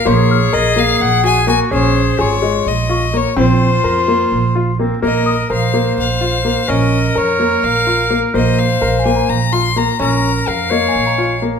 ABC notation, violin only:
X:1
M:7/8
L:1/8
Q:1/4=127
K:Bbm
V:1 name="Violin"
d2 e f g a a | c2 d2 e2 d | c4- c z2 | e2 f2 f3 |
e2 d2 f2 z | e f2 a b c' b | b2 f4 z |]